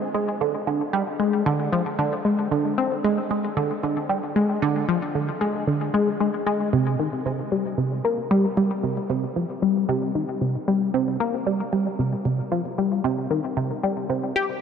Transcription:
0.14 G#3
0.41 D3
0.67 D3
0.93 G3
1.20 G#3
1.46 D3
1.72 F3
1.99 D3
2.25 G#3
2.51 D3
2.78 C4
3.04 G#3
3.31 G#3
3.57 D3
3.83 D3
4.09 G3
4.36 G#3
4.62 D3
4.88 F3
5.15 D3
5.41 G#3
5.67 D3
5.94 G#3
6.20 G#3
6.46 G#3
6.73 C3
6.99 D#3
7.26 C3
7.52 G3
7.78 C3
8.05 A#3
8.31 G3
8.57 G3
8.83 C3
9.10 C3
9.36 F3
9.62 G3
9.89 C3
10.15 D#3
10.41 C3
10.68 G3
10.94 C3
11.20 A#3
11.46 G3
11.73 G3
11.99 C3
12.25 C3
12.52 F3
12.78 G3
13.04 C3
13.31 D#3
13.57 C3
13.83 G3
14.10 C3
14.36 G4

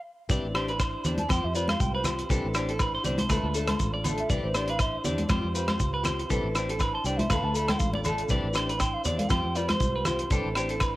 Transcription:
0.29 C2 E3 C4 D4 E4 G4 C5 D5, kick, closed hi-hat, shekere
0.43 A1
0.54 C4 D4 G4 C5, cross-stick, closed hi-hat, low agogo
0.68 B4, closed hi-hat
0.80 C5, kick, cross-stick, closed hi-hat, low agogo, shekere
1.04 E2 C4 D4 G4 D5, closed hi-hat, low conga, shekere
1.18 A5, closed hi-hat, high conga
1.29 F2 F3 C4 F4 G4 C5 G5, kick, cross-stick, closed hi-hat, high conga, low agogo, shekere
1.44 F2 E5
1.53 C4 F4 B4 D5, muted steel-string acoustic guitar stroke, closed hi-hat, shekere
1.68 C5 F5, cross-stick, closed hi-hat, high conga, low agogo
1.80 C2 G5, kick, closed hi-hat, shekere
1.94 B4 C5
2.04 C4 F4 G4 C5, cross-stick, closed hi-hat, low conga, low agogo, shekere
2.19 closed hi-hat
2.29 C2 E3 C4 D4 E4 G4 A4, kick, closed hi-hat, shekere
2.45 A1
2.54 D4 G4, cross-stick, closed hi-hat, low agogo, shekere
2.58 C4
2.69 A4, closed hi-hat
2.79 B4, kick, cross-stick, closed hi-hat, low agogo, shekere
2.95 C5
3.04 C2 C4 D4 G4 D5, closed hi-hat, low conga, shekere
3.18 C5, closed hi-hat, high conga
3.29 D2 F3 A3 D4 F4 A4 B4, kick, cross-stick, closed hi-hat, high conga, low agogo, shekere
3.43 D2
3.54 D4 A4, closed hi-hat, shekere
3.58 A3
3.68 C5, cross-stick, closed hi-hat, high conga, low agogo
3.79 A1, kick, closed hi-hat, shekere
3.94 D5
4.04 A3 D4 A4, closed hi-hat, low conga, low agogo, shekere
4.18 E5, closed hi-hat
4.29 C2 E3 D4 E4 G4 C5 D5, muted steel-string acoustic guitar stroke, kick, closed hi-hat, shekere
4.44 A1 C5
4.54 C4 D4 G4 C5 D5, cross-stick, closed hi-hat, low agogo, shekere
4.68 B4 F5, closed hi-hat
4.79 C5 E5, kick, cross-stick, closed hi-hat, low agogo, shekere
5.04 E2 C4 D4 G4 D5, closed hi-hat, low conga, shekere
5.18 closed hi-hat, high conga
5.29 F2 C4 F4 G4 C5, muted steel-string acoustic guitar stroke, kick, cross-stick, closed hi-hat, high conga, low agogo, shekere
5.44 F2
5.55 C4 F4 G4 B4, closed hi-hat, shekere
5.68 C5, cross-stick, closed hi-hat, high conga, low agogo
5.80 C#2, kick, closed hi-hat, shekere
5.94 B4
6.03 C4 F4 G4 C5, cross-stick, closed hi-hat, low conga, low agogo, shekere
6.19 closed hi-hat
6.29 C2 E3 C4 D4 E4 G4 A4, kick, closed hi-hat, shekere
6.44 A1
6.55 C4 D4 G4, cross-stick, closed hi-hat, low agogo, shekere
6.69 A4, closed hi-hat
6.79 B4, kick, cross-stick, closed hi-hat, low agogo, shekere
6.93 C5 A5
7.04 C2 D4 G4 D5 G5, closed hi-hat, shekere
7.09 C4
7.17 C5 E5, closed hi-hat, high conga
7.29 D2 F3 A3 D4 F4 A4 B4 F5, kick, cross-stick, closed hi-hat, low agogo, shekere
7.43 D2 A5
7.55 A3 D4 A4 B5, closed hi-hat, shekere
7.68 C5 G5, cross-stick, closed hi-hat, high conga, low agogo
7.78 A1 F5, kick, closed hi-hat, shekere
7.92 D5, high conga
8.04 A3 D4 A4, closed hi-hat, low conga, low agogo, shekere
8.18 closed hi-hat
8.29 C2 E3 C4 D4 E4 G4 C5 D5, kick, closed hi-hat, shekere
8.44 A1
8.53 C4 D4 G4 C5, cross-stick, closed hi-hat, low agogo, shekere
8.69 B4, closed hi-hat
8.79 C5 G5, kick, cross-stick, closed hi-hat, low agogo, shekere
8.93 F5
9.04 E2 C4 D4 G4 D5, closed hi-hat, low conga, shekere
9.18 F5, closed hi-hat, high conga
9.28 F2 F3 C4 F4 G4 C5 G5, kick, cross-stick, closed hi-hat, high conga, low agogo, shekere
9.45 F2
9.55 C4 F4 G4 B4 D5, closed hi-hat, shekere
9.68 C5, cross-stick, closed hi-hat, high conga, low agogo
9.80 C2, kick, closed hi-hat, shekere
9.96 B4
10.05 C4 F4 G4 C5, cross-stick, closed hi-hat, low conga, low agogo, shekere
10.19 closed hi-hat
10.29 C2 E3 C4 D4 E4 G4 A4 C5, kick, closed hi-hat, shekere
10.44 A1
10.55 C4 D4 G4, muted steel-string acoustic guitar stroke, cross-stick, closed hi-hat, low agogo, shekere
10.69 A4, closed hi-hat
10.80 B4, kick, cross-stick, closed hi-hat, low agogo, shekere

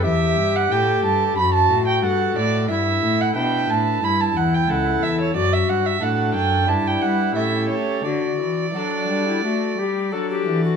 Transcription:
0.04 E2 G4 E5
0.38 G2
0.56 F#5
0.71 A2 G4 A4 G5
1.03 G2 A5
1.35 F#2 G4 B5
1.40 F#4
1.54 A5
1.70 A2
1.87 G5
2.02 G2 F#4 A4 F#5
2.35 A2 D5
2.69 G2 E4 E5
3.03 A2
3.21 F#5
3.35 B2 D4 E4 B4 G5
3.69 A2 A5
4.01 G2 E4 B5
4.21 A5
4.35 E2 F#5
4.54 G5
4.69 C#2 E4 A4 F#5
5.00 E2 E5
5.21 C#5
5.35 F#2 F#4 D5
5.53 E5
5.68 G2 F#5
5.86 E5
6.00 A2 D4 F#4 A4 F#5
6.34 F#2 G5
6.68 G2 D4 E4 B4 A5
6.87 G5
7.02 G3 F#5
7.35 A2 C#4 G4 A4 E5
7.69 A3 C#5
8.04 D3 F#4 D5
8.39 E3
8.74 F#3 D4 F#4 A4
9.09 G3
9.27 E4
9.43 A3 F#4
9.78 G3 G4
10.12 F#3 D4 F#4 A4
10.31 G4
10.48 E3
10.64 F#4

